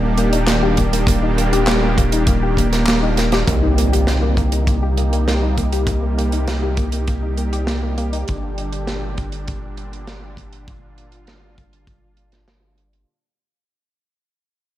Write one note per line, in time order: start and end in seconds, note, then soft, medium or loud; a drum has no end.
0.00 3.45 D#1 medium
0.00 3.44 D#3 medium
0.00 3.44 G3 medium
0.00 3.44 A#3 medium
0.00 0.15 A#3 medium
0.00 3.44 D4 medium
0.00 3.44 G4 medium
0.18 0.32 A#3 loud
0.18 closed hi-hat medium
0.33 0.45 D#4 medium
0.33 closed hi-hat medium
0.47 0.62 A#3 medium
0.47 snare loud
0.47 clap loud
0.47 closed hi-hat loud
0.63 0.75 G4 loud
0.77 0.90 A#3 medium
0.77 kick medium
0.77 closed hi-hat medium
0.93 1.05 A#3 medium
0.93 closed hi-hat medium
1.07 1.22 A#3 loud
1.07 kick loud
1.07 closed hi-hat loud
1.23 1.35 D#4 medium
1.38 1.52 A#3 medium
1.38 closed hi-hat medium
1.53 1.65 G4 loud
1.53 closed hi-hat medium
1.67 1.80 A#3 medium
1.67 snare loud
1.67 clap loud
1.67 closed hi-hat loud
1.83 1.95 A#3 medium
1.98 2.12 A#3 loud
1.98 kick loud
1.98 closed hi-hat medium
2.12 2.25 D#4 medium
2.12 closed hi-hat medium
2.27 2.42 A#3 medium
2.27 kick loud
2.27 closed hi-hat loud
2.43 2.55 G4 loud
2.57 2.70 A#3 medium
2.57 kick medium
2.57 closed hi-hat medium
2.73 2.85 A#3 medium
2.73 snare soft
2.73 closed hi-hat medium
2.87 3.02 A#3 loud
2.87 snare loud
2.87 clap loud
2.87 closed hi-hat loud
3.03 3.15 D#4 medium
3.17 3.32 A#3 medium
3.17 snare medium
3.17 closed hi-hat medium
3.32 3.45 G4 loud
3.32 snare medium
3.32 closed hi-hat medium
3.48 8.25 C2 medium
3.48 8.24 C3 medium
3.48 13.04 G3 medium
3.48 8.24 A#3 medium
3.48 3.62 A#3 loud
3.48 8.24 D#4 medium
3.48 10.64 G4 medium
3.48 kick loud
3.48 closed hi-hat medium
3.48 impact medium
3.63 3.75 D#4 medium
3.78 3.92 A#3 medium
3.78 closed hi-hat medium
3.93 4.05 G4 medium
3.93 closed hi-hat medium
4.07 4.20 A#3 medium
4.07 snare loud
4.07 closed hi-hat medium
4.23 4.35 A#3 medium
4.37 4.52 A#3 loud
4.37 kick loud
4.37 closed hi-hat medium
4.52 4.65 D#4 medium
4.52 closed hi-hat medium
4.67 4.82 A#3 medium
4.67 kick loud
4.67 closed hi-hat loud
4.83 4.95 G4 loud
4.97 5.10 A#3 medium
4.97 closed hi-hat medium
5.13 5.25 A#3 medium
5.13 closed hi-hat medium
5.28 5.42 A#3 loud
5.28 snare loud
5.28 closed hi-hat loud
5.43 5.55 D#4 medium
5.58 5.72 A#3 medium
5.58 kick medium
5.58 closed hi-hat medium
5.73 5.85 G4 loud
5.73 closed hi-hat medium
5.87 6.00 A#3 medium
5.87 kick loud
5.87 closed hi-hat loud
6.03 6.15 A#3 medium
6.18 6.32 A#3 loud
6.18 closed hi-hat medium
6.32 6.45 D#4 medium
6.32 closed hi-hat medium
6.48 6.62 A#3 medium
6.48 snare loud
6.48 closed hi-hat loud
6.63 6.75 G4 loud
6.77 6.90 A#3 medium
6.77 kick loud
6.77 closed hi-hat medium
6.92 7.05 A#3 medium
6.92 closed hi-hat medium
7.07 7.22 A#3 loud
7.07 kick loud
7.07 closed hi-hat medium
7.23 7.35 D#4 medium
7.37 7.52 A#3 medium
7.37 closed hi-hat medium
7.53 7.65 G4 loud
7.53 closed hi-hat medium
7.67 7.80 A#3 medium
7.67 snare loud
7.67 closed hi-hat loud
7.83 7.95 A#3 medium
7.98 8.12 A#3 loud
7.98 closed hi-hat medium
8.13 8.25 D#4 medium
8.13 closed hi-hat medium
8.28 13.05 G1 medium
8.28 13.04 A#2 medium
8.28 13.04 D3 medium
8.28 13.04 D4 medium
8.28 kick loud
8.28 closed hi-hat medium
8.58 closed hi-hat medium
8.73 closed hi-hat medium
8.87 snare loud
8.87 closed hi-hat medium
9.18 kick loud
9.18 closed hi-hat medium
9.32 closed hi-hat medium
9.48 kick loud
9.48 closed hi-hat medium
9.77 closed hi-hat medium
9.93 closed hi-hat medium
10.07 snare loud
10.07 closed hi-hat medium
10.37 kick medium
10.37 closed hi-hat medium
10.53 closed hi-hat medium
10.68 13.05 F4 medium
10.68 kick loud
10.68 closed hi-hat medium
10.98 closed hi-hat medium
11.12 closed hi-hat medium
11.27 snare loud
11.27 closed hi-hat medium
11.58 kick medium
11.58 closed hi-hat medium
11.73 closed hi-hat medium
11.87 kick loud
11.87 closed hi-hat medium
12.17 closed hi-hat medium
12.32 snare soft
12.32 closed hi-hat medium
12.48 snare loud
12.48 closed hi-hat loud
12.78 closed hi-hat medium
12.93 closed hi-hat medium